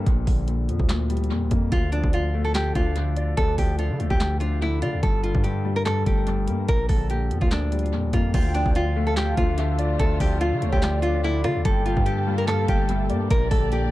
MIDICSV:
0, 0, Header, 1, 7, 480
1, 0, Start_track
1, 0, Key_signature, -1, "minor"
1, 0, Tempo, 413793
1, 75, Time_signature, 4, 2, 24, 8
1, 16137, End_track
2, 0, Start_track
2, 0, Title_t, "Soft synth lead"
2, 0, Program_c, 0, 80
2, 9675, Note_on_c, 0, 79, 103
2, 10352, Note_off_c, 0, 79, 0
2, 10394, Note_on_c, 0, 77, 86
2, 11071, Note_off_c, 0, 77, 0
2, 11107, Note_on_c, 0, 76, 96
2, 11339, Note_off_c, 0, 76, 0
2, 11357, Note_on_c, 0, 74, 81
2, 11584, Note_off_c, 0, 74, 0
2, 12315, Note_on_c, 0, 73, 83
2, 12543, Note_off_c, 0, 73, 0
2, 12555, Note_on_c, 0, 74, 102
2, 13469, Note_off_c, 0, 74, 0
2, 13517, Note_on_c, 0, 79, 103
2, 14193, Note_off_c, 0, 79, 0
2, 14236, Note_on_c, 0, 77, 99
2, 14912, Note_off_c, 0, 77, 0
2, 14958, Note_on_c, 0, 76, 86
2, 15185, Note_off_c, 0, 76, 0
2, 15192, Note_on_c, 0, 74, 80
2, 15422, Note_off_c, 0, 74, 0
2, 16137, End_track
3, 0, Start_track
3, 0, Title_t, "Nylon-string guitar"
3, 0, Program_c, 1, 24
3, 1993, Note_on_c, 1, 65, 95
3, 2197, Note_off_c, 1, 65, 0
3, 2227, Note_on_c, 1, 62, 83
3, 2433, Note_off_c, 1, 62, 0
3, 2478, Note_on_c, 1, 65, 91
3, 2822, Note_off_c, 1, 65, 0
3, 2836, Note_on_c, 1, 69, 75
3, 2934, Note_off_c, 1, 69, 0
3, 2957, Note_on_c, 1, 67, 84
3, 3159, Note_off_c, 1, 67, 0
3, 3193, Note_on_c, 1, 65, 81
3, 3871, Note_off_c, 1, 65, 0
3, 3911, Note_on_c, 1, 69, 96
3, 4115, Note_off_c, 1, 69, 0
3, 4160, Note_on_c, 1, 67, 81
3, 4360, Note_off_c, 1, 67, 0
3, 4393, Note_on_c, 1, 65, 81
3, 4739, Note_off_c, 1, 65, 0
3, 4758, Note_on_c, 1, 67, 80
3, 5092, Note_off_c, 1, 67, 0
3, 5104, Note_on_c, 1, 65, 84
3, 5311, Note_off_c, 1, 65, 0
3, 5360, Note_on_c, 1, 64, 92
3, 5561, Note_off_c, 1, 64, 0
3, 5591, Note_on_c, 1, 65, 82
3, 5795, Note_off_c, 1, 65, 0
3, 5832, Note_on_c, 1, 69, 86
3, 6036, Note_off_c, 1, 69, 0
3, 6072, Note_on_c, 1, 65, 80
3, 6276, Note_off_c, 1, 65, 0
3, 6306, Note_on_c, 1, 67, 72
3, 6655, Note_off_c, 1, 67, 0
3, 6682, Note_on_c, 1, 70, 96
3, 6777, Note_off_c, 1, 70, 0
3, 6790, Note_on_c, 1, 69, 92
3, 6995, Note_off_c, 1, 69, 0
3, 7038, Note_on_c, 1, 67, 80
3, 7713, Note_off_c, 1, 67, 0
3, 7755, Note_on_c, 1, 70, 101
3, 7957, Note_off_c, 1, 70, 0
3, 7989, Note_on_c, 1, 69, 80
3, 8194, Note_off_c, 1, 69, 0
3, 8239, Note_on_c, 1, 67, 71
3, 8582, Note_off_c, 1, 67, 0
3, 8596, Note_on_c, 1, 65, 80
3, 8694, Note_off_c, 1, 65, 0
3, 8719, Note_on_c, 1, 62, 88
3, 9394, Note_off_c, 1, 62, 0
3, 9436, Note_on_c, 1, 65, 89
3, 9638, Note_off_c, 1, 65, 0
3, 9676, Note_on_c, 1, 65, 97
3, 9878, Note_off_c, 1, 65, 0
3, 9910, Note_on_c, 1, 62, 88
3, 10115, Note_off_c, 1, 62, 0
3, 10159, Note_on_c, 1, 65, 90
3, 10503, Note_off_c, 1, 65, 0
3, 10517, Note_on_c, 1, 69, 75
3, 10615, Note_off_c, 1, 69, 0
3, 10639, Note_on_c, 1, 67, 87
3, 10840, Note_off_c, 1, 67, 0
3, 10874, Note_on_c, 1, 65, 85
3, 11551, Note_off_c, 1, 65, 0
3, 11593, Note_on_c, 1, 69, 92
3, 11797, Note_off_c, 1, 69, 0
3, 11841, Note_on_c, 1, 67, 85
3, 12041, Note_off_c, 1, 67, 0
3, 12074, Note_on_c, 1, 65, 83
3, 12420, Note_off_c, 1, 65, 0
3, 12439, Note_on_c, 1, 67, 82
3, 12773, Note_off_c, 1, 67, 0
3, 12786, Note_on_c, 1, 65, 85
3, 12992, Note_off_c, 1, 65, 0
3, 13042, Note_on_c, 1, 64, 96
3, 13242, Note_off_c, 1, 64, 0
3, 13271, Note_on_c, 1, 65, 87
3, 13475, Note_off_c, 1, 65, 0
3, 13514, Note_on_c, 1, 69, 91
3, 13717, Note_off_c, 1, 69, 0
3, 13753, Note_on_c, 1, 65, 80
3, 13957, Note_off_c, 1, 65, 0
3, 13986, Note_on_c, 1, 67, 78
3, 14336, Note_off_c, 1, 67, 0
3, 14360, Note_on_c, 1, 70, 97
3, 14456, Note_off_c, 1, 70, 0
3, 14470, Note_on_c, 1, 69, 92
3, 14675, Note_off_c, 1, 69, 0
3, 14716, Note_on_c, 1, 67, 82
3, 15393, Note_off_c, 1, 67, 0
3, 15435, Note_on_c, 1, 70, 105
3, 15638, Note_off_c, 1, 70, 0
3, 15669, Note_on_c, 1, 69, 84
3, 15874, Note_off_c, 1, 69, 0
3, 15920, Note_on_c, 1, 67, 76
3, 16137, Note_off_c, 1, 67, 0
3, 16137, End_track
4, 0, Start_track
4, 0, Title_t, "String section"
4, 0, Program_c, 2, 48
4, 9675, Note_on_c, 2, 57, 78
4, 9676, Note_on_c, 2, 50, 84
4, 9676, Note_on_c, 2, 65, 92
4, 13477, Note_off_c, 2, 50, 0
4, 13477, Note_off_c, 2, 57, 0
4, 13477, Note_off_c, 2, 65, 0
4, 13515, Note_on_c, 2, 46, 86
4, 13515, Note_on_c, 2, 69, 94
4, 13516, Note_on_c, 2, 67, 76
4, 15416, Note_off_c, 2, 69, 0
4, 15417, Note_off_c, 2, 67, 0
4, 15433, Note_on_c, 2, 74, 96
4, 15434, Note_on_c, 2, 67, 80
4, 16137, Note_off_c, 2, 46, 0
4, 16137, Note_off_c, 2, 67, 0
4, 16137, Note_off_c, 2, 74, 0
4, 16137, End_track
5, 0, Start_track
5, 0, Title_t, "Grand piano"
5, 0, Program_c, 3, 0
5, 0, Control_c, 3, 64, 127
5, 79, Note_on_c, 3, 46, 91
5, 89, Control_c, 3, 64, 0
5, 262, Control_c, 3, 64, 127
5, 314, Note_on_c, 3, 50, 76
5, 541, Note_off_c, 3, 46, 0
5, 559, Note_on_c, 3, 46, 73
5, 794, Note_on_c, 3, 53, 83
5, 1014, Note_off_c, 3, 46, 0
5, 1031, Note_on_c, 3, 46, 73
5, 1273, Note_on_c, 3, 55, 83
5, 1498, Note_off_c, 3, 46, 0
5, 1515, Note_off_c, 3, 50, 0
5, 1515, Note_on_c, 3, 46, 85
5, 1758, Note_on_c, 3, 58, 88
5, 1992, Note_on_c, 3, 50, 84
5, 1994, Note_off_c, 3, 55, 0
5, 1995, Note_off_c, 3, 46, 0
5, 1995, Note_off_c, 3, 53, 0
5, 1996, Note_off_c, 3, 58, 0
5, 2011, Control_c, 3, 64, 0
5, 2192, Control_c, 3, 64, 127
5, 2234, Note_on_c, 3, 53, 76
5, 2458, Note_off_c, 3, 50, 0
5, 2475, Note_on_c, 3, 50, 68
5, 2718, Note_on_c, 3, 57, 93
5, 2940, Note_off_c, 3, 50, 0
5, 2958, Note_on_c, 3, 50, 71
5, 3199, Note_on_c, 3, 62, 83
5, 3419, Note_off_c, 3, 50, 0
5, 3434, Note_off_c, 3, 53, 0
5, 3436, Note_on_c, 3, 50, 93
5, 3673, Note_on_c, 3, 74, 83
5, 3897, Note_off_c, 3, 50, 0
5, 3915, Note_on_c, 3, 50, 92
5, 3917, Note_off_c, 3, 57, 0
5, 4155, Note_on_c, 3, 53, 78
5, 4377, Note_off_c, 3, 50, 0
5, 4395, Note_on_c, 3, 50, 70
5, 4397, Note_off_c, 3, 62, 0
5, 4637, Note_on_c, 3, 57, 85
5, 4860, Note_off_c, 3, 50, 0
5, 4874, Note_off_c, 3, 74, 0
5, 4877, Note_on_c, 3, 50, 73
5, 5117, Note_on_c, 3, 62, 83
5, 5337, Note_off_c, 3, 50, 0
5, 5355, Note_off_c, 3, 53, 0
5, 5355, Note_on_c, 3, 50, 84
5, 5597, Note_on_c, 3, 74, 83
5, 5835, Note_off_c, 3, 50, 0
5, 5835, Note_on_c, 3, 43, 90
5, 5836, Note_off_c, 3, 57, 0
5, 5836, Note_off_c, 3, 62, 0
5, 5836, Note_off_c, 3, 74, 0
5, 5850, Control_c, 3, 64, 0
5, 6030, Control_c, 3, 64, 127
5, 6077, Note_on_c, 3, 50, 78
5, 6297, Note_off_c, 3, 43, 0
5, 6315, Note_on_c, 3, 43, 75
5, 6551, Note_on_c, 3, 55, 95
5, 6777, Note_off_c, 3, 43, 0
5, 6794, Note_on_c, 3, 43, 78
5, 7034, Note_on_c, 3, 57, 79
5, 7258, Note_off_c, 3, 43, 0
5, 7276, Note_off_c, 3, 50, 0
5, 7276, Note_on_c, 3, 43, 89
5, 7513, Note_on_c, 3, 58, 85
5, 7753, Note_off_c, 3, 55, 0
5, 7754, Note_off_c, 3, 58, 0
5, 7755, Note_off_c, 3, 43, 0
5, 7755, Note_off_c, 3, 57, 0
5, 7759, Note_on_c, 3, 46, 91
5, 7773, Control_c, 3, 64, 0
5, 7970, Control_c, 3, 64, 127
5, 7994, Note_on_c, 3, 50, 79
5, 8220, Note_off_c, 3, 46, 0
5, 8237, Note_on_c, 3, 46, 70
5, 8475, Note_on_c, 3, 53, 83
5, 8695, Note_off_c, 3, 46, 0
5, 8713, Note_on_c, 3, 46, 73
5, 8954, Note_on_c, 3, 55, 81
5, 9179, Note_off_c, 3, 46, 0
5, 9195, Note_off_c, 3, 50, 0
5, 9196, Note_on_c, 3, 46, 86
5, 9439, Note_on_c, 3, 58, 87
5, 9673, Note_on_c, 3, 50, 84
5, 9675, Note_off_c, 3, 53, 0
5, 9675, Note_off_c, 3, 55, 0
5, 9676, Note_off_c, 3, 46, 0
5, 9677, Note_off_c, 3, 58, 0
5, 9692, Control_c, 3, 64, 0
5, 9874, Control_c, 3, 64, 127
5, 9915, Note_on_c, 3, 53, 77
5, 10140, Note_off_c, 3, 50, 0
5, 10157, Note_on_c, 3, 50, 73
5, 10398, Note_on_c, 3, 57, 96
5, 10621, Note_off_c, 3, 50, 0
5, 10638, Note_on_c, 3, 50, 73
5, 10878, Note_on_c, 3, 62, 85
5, 11097, Note_off_c, 3, 50, 0
5, 11114, Note_on_c, 3, 50, 98
5, 11115, Note_off_c, 3, 53, 0
5, 11353, Note_on_c, 3, 74, 88
5, 11579, Note_off_c, 3, 50, 0
5, 11597, Note_off_c, 3, 57, 0
5, 11597, Note_on_c, 3, 50, 93
5, 11835, Note_on_c, 3, 53, 82
5, 12058, Note_off_c, 3, 50, 0
5, 12075, Note_on_c, 3, 50, 68
5, 12077, Note_off_c, 3, 62, 0
5, 12318, Note_on_c, 3, 57, 91
5, 12541, Note_off_c, 3, 50, 0
5, 12554, Note_off_c, 3, 74, 0
5, 12558, Note_on_c, 3, 50, 75
5, 12798, Note_on_c, 3, 62, 83
5, 13018, Note_off_c, 3, 50, 0
5, 13035, Note_off_c, 3, 53, 0
5, 13035, Note_on_c, 3, 50, 90
5, 13278, Note_on_c, 3, 74, 89
5, 13514, Note_on_c, 3, 43, 92
5, 13515, Note_off_c, 3, 50, 0
5, 13517, Note_off_c, 3, 57, 0
5, 13517, Note_off_c, 3, 62, 0
5, 13517, Note_off_c, 3, 74, 0
5, 13531, Control_c, 3, 64, 0
5, 13749, Control_c, 3, 64, 127
5, 13755, Note_on_c, 3, 50, 78
5, 13977, Note_off_c, 3, 43, 0
5, 13994, Note_on_c, 3, 43, 77
5, 14232, Note_on_c, 3, 55, 100
5, 14456, Note_off_c, 3, 43, 0
5, 14473, Note_on_c, 3, 43, 75
5, 14714, Note_on_c, 3, 57, 81
5, 14939, Note_off_c, 3, 43, 0
5, 14955, Note_off_c, 3, 50, 0
5, 14956, Note_on_c, 3, 43, 88
5, 15194, Note_on_c, 3, 58, 90
5, 15433, Note_off_c, 3, 55, 0
5, 15435, Note_off_c, 3, 57, 0
5, 15435, Note_off_c, 3, 58, 0
5, 15436, Note_off_c, 3, 43, 0
5, 15439, Note_on_c, 3, 46, 94
5, 15448, Control_c, 3, 64, 0
5, 15665, Control_c, 3, 64, 127
5, 15673, Note_on_c, 3, 50, 81
5, 15901, Note_off_c, 3, 46, 0
5, 15918, Note_on_c, 3, 46, 76
5, 16137, Note_off_c, 3, 46, 0
5, 16137, Note_off_c, 3, 50, 0
5, 16137, End_track
6, 0, Start_track
6, 0, Title_t, "808-style bass"
6, 0, Program_c, 4, 38
6, 75, Note_on_c, 4, 34, 113
6, 305, Note_off_c, 4, 34, 0
6, 315, Note_on_c, 4, 34, 109
6, 795, Note_on_c, 4, 41, 100
6, 812, Note_off_c, 4, 34, 0
6, 916, Note_off_c, 4, 41, 0
6, 922, Note_on_c, 4, 38, 109
6, 1515, Note_on_c, 4, 41, 96
6, 1532, Note_off_c, 4, 38, 0
6, 1643, Note_on_c, 4, 38, 102
6, 1660, Note_off_c, 4, 41, 0
6, 1750, Note_off_c, 4, 38, 0
6, 1754, Note_on_c, 4, 41, 104
6, 1985, Note_off_c, 4, 41, 0
6, 1995, Note_on_c, 4, 38, 110
6, 2347, Note_off_c, 4, 38, 0
6, 2362, Note_on_c, 4, 38, 106
6, 3161, Note_off_c, 4, 38, 0
6, 3194, Note_on_c, 4, 38, 102
6, 3886, Note_off_c, 4, 38, 0
6, 3915, Note_on_c, 4, 38, 111
6, 4145, Note_off_c, 4, 38, 0
6, 4154, Note_on_c, 4, 38, 105
6, 4522, Note_on_c, 4, 50, 95
6, 4539, Note_off_c, 4, 38, 0
6, 4635, Note_on_c, 4, 38, 100
6, 4652, Note_off_c, 4, 50, 0
6, 4756, Note_off_c, 4, 38, 0
6, 4762, Note_on_c, 4, 38, 108
6, 5595, Note_on_c, 4, 50, 98
6, 5612, Note_off_c, 4, 38, 0
6, 5722, Note_on_c, 4, 38, 98
6, 5739, Note_off_c, 4, 50, 0
6, 5829, Note_off_c, 4, 38, 0
6, 5835, Note_on_c, 4, 31, 110
6, 6187, Note_off_c, 4, 31, 0
6, 6202, Note_on_c, 4, 43, 106
6, 7002, Note_off_c, 4, 43, 0
6, 7035, Note_on_c, 4, 31, 104
6, 7514, Note_on_c, 4, 43, 100
6, 7532, Note_off_c, 4, 31, 0
6, 7743, Note_off_c, 4, 43, 0
6, 7755, Note_on_c, 4, 34, 111
6, 7986, Note_off_c, 4, 34, 0
6, 7994, Note_on_c, 4, 34, 109
6, 8474, Note_on_c, 4, 41, 98
6, 8491, Note_off_c, 4, 34, 0
6, 8595, Note_off_c, 4, 41, 0
6, 8603, Note_on_c, 4, 38, 108
6, 9194, Note_on_c, 4, 41, 96
6, 9211, Note_off_c, 4, 38, 0
6, 9322, Note_on_c, 4, 38, 98
6, 9339, Note_off_c, 4, 41, 0
6, 9429, Note_off_c, 4, 38, 0
6, 9435, Note_on_c, 4, 41, 104
6, 9665, Note_off_c, 4, 41, 0
6, 9675, Note_on_c, 4, 38, 111
6, 10028, Note_off_c, 4, 38, 0
6, 10042, Note_on_c, 4, 38, 108
6, 10842, Note_off_c, 4, 38, 0
6, 10874, Note_on_c, 4, 38, 106
6, 11566, Note_off_c, 4, 38, 0
6, 11595, Note_on_c, 4, 38, 112
6, 11825, Note_off_c, 4, 38, 0
6, 11834, Note_on_c, 4, 38, 106
6, 12203, Note_on_c, 4, 50, 98
6, 12220, Note_off_c, 4, 38, 0
6, 12314, Note_on_c, 4, 38, 101
6, 12331, Note_off_c, 4, 50, 0
6, 12435, Note_off_c, 4, 38, 0
6, 12442, Note_on_c, 4, 38, 108
6, 13275, Note_on_c, 4, 50, 102
6, 13292, Note_off_c, 4, 38, 0
6, 13401, Note_on_c, 4, 38, 103
6, 13419, Note_off_c, 4, 50, 0
6, 13509, Note_off_c, 4, 38, 0
6, 13515, Note_on_c, 4, 31, 114
6, 13868, Note_off_c, 4, 31, 0
6, 13882, Note_on_c, 4, 43, 106
6, 14682, Note_off_c, 4, 43, 0
6, 14714, Note_on_c, 4, 31, 107
6, 15195, Note_on_c, 4, 43, 99
6, 15213, Note_off_c, 4, 31, 0
6, 15423, Note_off_c, 4, 43, 0
6, 15435, Note_on_c, 4, 34, 114
6, 15665, Note_off_c, 4, 34, 0
6, 15674, Note_on_c, 4, 34, 108
6, 16137, Note_off_c, 4, 34, 0
6, 16137, End_track
7, 0, Start_track
7, 0, Title_t, "Drums"
7, 75, Note_on_c, 9, 36, 116
7, 75, Note_on_c, 9, 42, 87
7, 191, Note_off_c, 9, 36, 0
7, 191, Note_off_c, 9, 42, 0
7, 315, Note_on_c, 9, 36, 98
7, 315, Note_on_c, 9, 46, 78
7, 431, Note_off_c, 9, 36, 0
7, 431, Note_off_c, 9, 46, 0
7, 553, Note_on_c, 9, 42, 70
7, 669, Note_off_c, 9, 42, 0
7, 799, Note_on_c, 9, 42, 70
7, 915, Note_off_c, 9, 42, 0
7, 922, Note_on_c, 9, 36, 100
7, 1034, Note_on_c, 9, 38, 116
7, 1038, Note_off_c, 9, 36, 0
7, 1038, Note_on_c, 9, 42, 75
7, 1039, Note_on_c, 9, 39, 94
7, 1150, Note_off_c, 9, 38, 0
7, 1154, Note_off_c, 9, 42, 0
7, 1155, Note_off_c, 9, 39, 0
7, 1275, Note_on_c, 9, 42, 75
7, 1355, Note_off_c, 9, 42, 0
7, 1355, Note_on_c, 9, 42, 56
7, 1435, Note_off_c, 9, 42, 0
7, 1435, Note_on_c, 9, 42, 44
7, 1551, Note_off_c, 9, 42, 0
7, 1751, Note_on_c, 9, 42, 84
7, 1755, Note_on_c, 9, 36, 91
7, 1867, Note_off_c, 9, 42, 0
7, 1871, Note_off_c, 9, 36, 0
7, 1994, Note_on_c, 9, 42, 90
7, 1995, Note_on_c, 9, 36, 115
7, 2110, Note_off_c, 9, 42, 0
7, 2111, Note_off_c, 9, 36, 0
7, 2234, Note_on_c, 9, 42, 71
7, 2350, Note_off_c, 9, 42, 0
7, 2362, Note_on_c, 9, 36, 98
7, 2472, Note_on_c, 9, 42, 69
7, 2478, Note_off_c, 9, 36, 0
7, 2588, Note_off_c, 9, 42, 0
7, 2954, Note_on_c, 9, 38, 115
7, 2957, Note_on_c, 9, 42, 71
7, 2959, Note_on_c, 9, 39, 93
7, 3070, Note_off_c, 9, 38, 0
7, 3073, Note_off_c, 9, 42, 0
7, 3075, Note_off_c, 9, 39, 0
7, 3194, Note_on_c, 9, 36, 96
7, 3194, Note_on_c, 9, 42, 74
7, 3310, Note_off_c, 9, 36, 0
7, 3310, Note_off_c, 9, 42, 0
7, 3430, Note_on_c, 9, 42, 78
7, 3546, Note_off_c, 9, 42, 0
7, 3671, Note_on_c, 9, 42, 76
7, 3787, Note_off_c, 9, 42, 0
7, 3914, Note_on_c, 9, 42, 93
7, 3915, Note_on_c, 9, 36, 120
7, 4030, Note_off_c, 9, 42, 0
7, 4031, Note_off_c, 9, 36, 0
7, 4154, Note_on_c, 9, 46, 80
7, 4155, Note_on_c, 9, 36, 100
7, 4270, Note_off_c, 9, 46, 0
7, 4271, Note_off_c, 9, 36, 0
7, 4393, Note_on_c, 9, 42, 69
7, 4509, Note_off_c, 9, 42, 0
7, 4639, Note_on_c, 9, 42, 70
7, 4755, Note_off_c, 9, 42, 0
7, 4762, Note_on_c, 9, 36, 98
7, 4875, Note_on_c, 9, 38, 116
7, 4878, Note_off_c, 9, 36, 0
7, 4878, Note_on_c, 9, 42, 70
7, 4880, Note_on_c, 9, 39, 88
7, 4991, Note_off_c, 9, 38, 0
7, 4994, Note_off_c, 9, 42, 0
7, 4996, Note_off_c, 9, 39, 0
7, 5114, Note_on_c, 9, 42, 70
7, 5230, Note_off_c, 9, 42, 0
7, 5592, Note_on_c, 9, 42, 85
7, 5708, Note_off_c, 9, 42, 0
7, 5835, Note_on_c, 9, 36, 119
7, 5835, Note_on_c, 9, 42, 92
7, 5951, Note_off_c, 9, 36, 0
7, 5951, Note_off_c, 9, 42, 0
7, 6075, Note_on_c, 9, 42, 72
7, 6191, Note_off_c, 9, 42, 0
7, 6202, Note_on_c, 9, 36, 100
7, 6313, Note_on_c, 9, 42, 71
7, 6318, Note_off_c, 9, 36, 0
7, 6429, Note_off_c, 9, 42, 0
7, 6794, Note_on_c, 9, 38, 118
7, 6798, Note_on_c, 9, 42, 69
7, 6800, Note_on_c, 9, 39, 90
7, 6910, Note_off_c, 9, 38, 0
7, 6914, Note_off_c, 9, 42, 0
7, 6916, Note_off_c, 9, 39, 0
7, 7034, Note_on_c, 9, 36, 91
7, 7034, Note_on_c, 9, 42, 78
7, 7150, Note_off_c, 9, 36, 0
7, 7150, Note_off_c, 9, 42, 0
7, 7270, Note_on_c, 9, 42, 78
7, 7386, Note_off_c, 9, 42, 0
7, 7511, Note_on_c, 9, 42, 80
7, 7627, Note_off_c, 9, 42, 0
7, 7754, Note_on_c, 9, 42, 90
7, 7755, Note_on_c, 9, 36, 115
7, 7870, Note_off_c, 9, 42, 0
7, 7871, Note_off_c, 9, 36, 0
7, 7994, Note_on_c, 9, 46, 76
7, 7995, Note_on_c, 9, 36, 101
7, 8110, Note_off_c, 9, 46, 0
7, 8111, Note_off_c, 9, 36, 0
7, 8233, Note_on_c, 9, 42, 68
7, 8349, Note_off_c, 9, 42, 0
7, 8479, Note_on_c, 9, 42, 71
7, 8595, Note_off_c, 9, 42, 0
7, 8603, Note_on_c, 9, 36, 103
7, 8715, Note_on_c, 9, 38, 116
7, 8718, Note_on_c, 9, 42, 69
7, 8719, Note_off_c, 9, 36, 0
7, 8720, Note_on_c, 9, 39, 95
7, 8831, Note_off_c, 9, 38, 0
7, 8834, Note_off_c, 9, 42, 0
7, 8836, Note_off_c, 9, 39, 0
7, 8955, Note_on_c, 9, 42, 70
7, 9036, Note_off_c, 9, 42, 0
7, 9036, Note_on_c, 9, 42, 57
7, 9115, Note_off_c, 9, 42, 0
7, 9115, Note_on_c, 9, 42, 44
7, 9231, Note_off_c, 9, 42, 0
7, 9432, Note_on_c, 9, 42, 82
7, 9435, Note_on_c, 9, 36, 90
7, 9548, Note_off_c, 9, 42, 0
7, 9551, Note_off_c, 9, 36, 0
7, 9674, Note_on_c, 9, 42, 91
7, 9674, Note_on_c, 9, 49, 107
7, 9675, Note_on_c, 9, 36, 120
7, 9790, Note_off_c, 9, 42, 0
7, 9790, Note_off_c, 9, 49, 0
7, 9791, Note_off_c, 9, 36, 0
7, 9915, Note_on_c, 9, 42, 72
7, 10031, Note_off_c, 9, 42, 0
7, 10042, Note_on_c, 9, 36, 104
7, 10152, Note_on_c, 9, 42, 71
7, 10158, Note_off_c, 9, 36, 0
7, 10268, Note_off_c, 9, 42, 0
7, 10633, Note_on_c, 9, 38, 115
7, 10637, Note_on_c, 9, 42, 72
7, 10639, Note_on_c, 9, 39, 92
7, 10749, Note_off_c, 9, 38, 0
7, 10753, Note_off_c, 9, 42, 0
7, 10755, Note_off_c, 9, 39, 0
7, 10873, Note_on_c, 9, 42, 81
7, 10874, Note_on_c, 9, 36, 98
7, 10989, Note_off_c, 9, 42, 0
7, 10990, Note_off_c, 9, 36, 0
7, 11110, Note_on_c, 9, 42, 78
7, 11226, Note_off_c, 9, 42, 0
7, 11352, Note_on_c, 9, 42, 78
7, 11468, Note_off_c, 9, 42, 0
7, 11594, Note_on_c, 9, 42, 91
7, 11595, Note_on_c, 9, 36, 122
7, 11710, Note_off_c, 9, 42, 0
7, 11711, Note_off_c, 9, 36, 0
7, 11835, Note_on_c, 9, 36, 101
7, 11835, Note_on_c, 9, 46, 78
7, 11951, Note_off_c, 9, 36, 0
7, 11951, Note_off_c, 9, 46, 0
7, 12073, Note_on_c, 9, 42, 70
7, 12189, Note_off_c, 9, 42, 0
7, 12319, Note_on_c, 9, 42, 72
7, 12435, Note_off_c, 9, 42, 0
7, 12443, Note_on_c, 9, 36, 103
7, 12555, Note_on_c, 9, 38, 114
7, 12559, Note_off_c, 9, 36, 0
7, 12559, Note_on_c, 9, 42, 75
7, 12560, Note_on_c, 9, 39, 95
7, 12671, Note_off_c, 9, 38, 0
7, 12675, Note_off_c, 9, 42, 0
7, 12676, Note_off_c, 9, 39, 0
7, 12794, Note_on_c, 9, 42, 71
7, 12910, Note_off_c, 9, 42, 0
7, 13272, Note_on_c, 9, 42, 85
7, 13275, Note_on_c, 9, 37, 98
7, 13388, Note_off_c, 9, 42, 0
7, 13391, Note_off_c, 9, 37, 0
7, 13514, Note_on_c, 9, 42, 95
7, 13515, Note_on_c, 9, 36, 123
7, 13630, Note_off_c, 9, 42, 0
7, 13631, Note_off_c, 9, 36, 0
7, 13754, Note_on_c, 9, 42, 74
7, 13870, Note_off_c, 9, 42, 0
7, 13882, Note_on_c, 9, 36, 100
7, 13992, Note_on_c, 9, 42, 70
7, 13998, Note_off_c, 9, 36, 0
7, 14108, Note_off_c, 9, 42, 0
7, 14474, Note_on_c, 9, 38, 113
7, 14477, Note_on_c, 9, 42, 75
7, 14479, Note_on_c, 9, 39, 92
7, 14590, Note_off_c, 9, 38, 0
7, 14593, Note_off_c, 9, 42, 0
7, 14595, Note_off_c, 9, 39, 0
7, 14713, Note_on_c, 9, 42, 78
7, 14714, Note_on_c, 9, 36, 95
7, 14829, Note_off_c, 9, 42, 0
7, 14830, Note_off_c, 9, 36, 0
7, 14949, Note_on_c, 9, 42, 80
7, 15065, Note_off_c, 9, 42, 0
7, 15191, Note_on_c, 9, 42, 79
7, 15307, Note_off_c, 9, 42, 0
7, 15433, Note_on_c, 9, 42, 92
7, 15434, Note_on_c, 9, 36, 125
7, 15549, Note_off_c, 9, 42, 0
7, 15550, Note_off_c, 9, 36, 0
7, 15674, Note_on_c, 9, 36, 101
7, 15674, Note_on_c, 9, 46, 77
7, 15790, Note_off_c, 9, 36, 0
7, 15790, Note_off_c, 9, 46, 0
7, 15912, Note_on_c, 9, 42, 68
7, 16028, Note_off_c, 9, 42, 0
7, 16137, End_track
0, 0, End_of_file